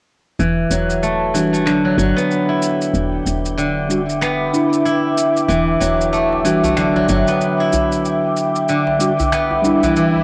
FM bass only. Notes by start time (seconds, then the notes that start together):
0.39 E1
0.70 E1
1.98 G1
2.94 E1
3.26 E1
5.49 E1
5.81 E1
7.09 G1